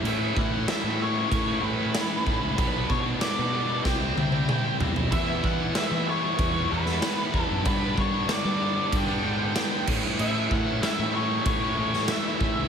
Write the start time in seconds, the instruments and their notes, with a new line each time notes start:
0.04 fingered electric bass A2, distorted electric guitar A2 E3 A3 C#4 E4, overdriven electric guitar G3, lead electric guitar E5, crash
0.19 overdriven electric guitar G3, distorted electric guitar A3 C#4 E4
0.35 fingered electric bass A2, distorted electric guitar E3 A3 C#4 E4, kick
0.39 lead electric guitar F#5
0.52 overdriven electric guitar G3, distorted electric guitar A3 C#4 E4
0.68 distorted electric guitar A2 E3 A3 C#4 E4, overdriven electric guitar G3, lead electric guitar E5, snare, crash
0.83 fingered electric bass A2
0.99 distorted electric guitar E3 A3 C#4 E4, overdriven electric guitar G3, lead electric guitar C#5
1.14 overdriven electric guitar G3, distorted electric guitar A3 C#4 E4
1.31 fingered electric bass A2, kick, crash
1.45 overdriven electric guitar G3, distorted electric guitar A3 C#4 E4
1.61 fingered electric bass A2, distorted electric guitar E3 A3 C#4 E4, overdriven electric guitar G3, lead electric guitar B4
1.79 overdriven electric guitar G3, distorted electric guitar A3 C#4 E4
1.94 distorted electric guitar A2 E3 A3 C#4 E4, overdriven electric guitar G3, snare, crash
2.25 fingered electric bass A2, distorted electric guitar E3 A3 C#4 E4, overdriven electric guitar G3, kick
2.41 fingered electric bass C#2, overdriven electric guitar G3 C#4 E4
2.57 fingered electric bass B1, distorted electric guitar B2 G3 B3 D4, lead electric guitar B4, kick, crash
2.74 distorted electric guitar G3 B3 D4
2.89 distorted electric guitar B2 G3 B3 D4, fingered electric bass B2, lead electric guitar C#5, kick
3.05 distorted electric guitar G3 B3 D4
3.20 distorted electric guitar B2 G3 B3 D4, lead electric guitar D5, snare, crash
3.38 fingered electric bass B2
3.53 distorted electric guitar B2 G3 B3 D4
3.68 distorted electric guitar G3 B3 D4
3.83 fingered electric bass C2, distorted electric guitar C3 G3 C4 E4, lead electric guitar G5, kick, snare
4.01 distorted electric guitar G3 C4 E4
4.17 fingered electric bass C2, distorted electric guitar C3 G3 C4 E4, high tom
4.32 distorted electric guitar G3 C4 E4, high tom
4.48 distorted electric guitar C3 G3 C4 E4, mid tom
4.80 fingered electric bass C2, distorted electric guitar C3 G3 C4 E4, floor tom
4.96 fingered electric bass B1, overdriven electric guitar G3 C4 E4, floor tom
5.11 fingered electric bass E2, distorted electric guitar E3 G3 B3 E4, lead electric guitar E5, kick, crash
5.27 distorted electric guitar G3 B3 E4
5.41 distorted electric guitar E3 G3 B3 E4, fingered electric bass E3, lead electric guitar F#5, kick
5.59 distorted electric guitar G3 B3 E4
5.74 distorted electric guitar E3 G3 B3 E4, lead electric guitar E5, snare, crash
5.91 fingered electric bass E3
6.06 distorted electric guitar E3 G3 B3 E4, lead electric guitar C#5
6.22 distorted electric guitar G3 B3 E4
6.39 fingered electric bass E2, kick, crash
6.53 distorted electric guitar G3 B3 E4
6.69 fingered electric bass E2, distorted electric guitar E3 G3 B3 E4, lead electric guitar B4
6.85 distorted electric guitar G3 B3 E4, snare
7.02 distorted electric guitar E3 G3 B3 E4, snare, crash
7.32 fingered electric bass E2, distorted electric guitar E3 G3 B3 E4, kick
7.41 lead electric guitar A4
7.48 fingered electric bass F#2, overdriven electric guitar G3 B3 E4
7.63 distorted electric guitar G2 D3 G3 B3 D4, fingered electric bass G2, lead electric guitar B4, kick, crash
7.79 distorted electric guitar G3 B3 D4
7.94 distorted electric guitar D3 G3 B3 D4, fingered electric bass G3, kick
7.99 lead electric guitar C#5
8.11 distorted electric guitar G3 B3 D4
8.25 distorted electric guitar G2 D3 G3 B3 D4, snare, crash
8.32 lead electric guitar D5
8.45 fingered electric bass G3
8.60 distorted electric guitar D3 G3 B3 D4
8.75 distorted electric guitar G3 B3 D4
8.92 fingered electric bass G2, lead electric guitar G5, kick, crash
9.07 distorted electric guitar G3 B3 D4
9.24 fingered electric bass G#2, distorted electric guitar D3 G3 B3 D4
9.38 distorted electric guitar G3 B3 D4
9.55 distorted electric guitar G2 D3 G3 B3 D4, snare, crash
9.86 distorted electric guitar A2 E3 A3 C#4 E4, fingered electric bass A2, overdriven electric guitar G3, kick, crash
10.02 fingered electric bass G2, overdriven electric guitar G3 C#4 E4
10.17 distorted electric guitar A2 E3 A3 C#4 E4, fingered electric bass A2, overdriven electric guitar G3, lead electric guitar E5, crash
10.33 overdriven electric guitar G3, distorted electric guitar A3 C#4 E4
10.49 fingered electric bass A2, distorted electric guitar E3 A3 C#4 E4, lead electric guitar F#5, kick
10.65 overdriven electric guitar G3, distorted electric guitar A3 C#4 E4
10.81 distorted electric guitar A2 E3 A3 C#4 E4, overdriven electric guitar G3, lead electric guitar E5, snare, crash
10.99 fingered electric bass A2
11.12 distorted electric guitar E3 A3 C#4 E4, overdriven electric guitar G3, lead electric guitar C#5
11.28 overdriven electric guitar G3, distorted electric guitar A3 C#4 E4
11.46 fingered electric bass A2, lead electric guitar C#5, kick, crash
11.59 distorted electric guitar A3 C#4 E4
11.64 overdriven electric guitar G3
11.76 fingered electric bass A2, distorted electric guitar E3 A3 C#4 E4, overdriven electric guitar G3
11.93 overdriven electric guitar G3, distorted electric guitar A3 C#4 E4, snare
12.07 distorted electric guitar A2 E3 A3 C#4 E4, lead electric guitar E5, snare, crash
12.11 overdriven electric guitar G3
12.38 fingered electric bass A2, distorted electric guitar E3 A3 C#4 E4, overdriven electric guitar G3, kick
12.56 fingered electric bass C#2, overdriven electric guitar G3 C#4 E4